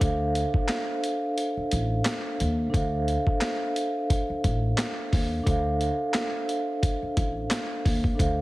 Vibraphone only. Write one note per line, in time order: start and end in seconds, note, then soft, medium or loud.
0.00 2.68 D4 medium
0.00 2.69 A4 medium
0.00 2.70 C5 medium
0.00 2.71 E5 medium
0.00 2.71 F5 medium
2.70 5.40 D4 medium
2.70 5.41 A4 medium
2.70 5.42 C5 medium
2.74 5.43 E5 medium
2.74 5.44 F5 medium
5.43 8.14 D4 medium
5.43 8.14 A4 medium
5.43 8.15 C5 medium
5.48 8.16 E5 medium
5.48 8.17 F5 medium
8.15 8.41 D4 medium
8.15 8.41 A4 medium
8.15 8.41 C5 medium
8.20 8.41 E5 medium
8.20 8.41 F5 medium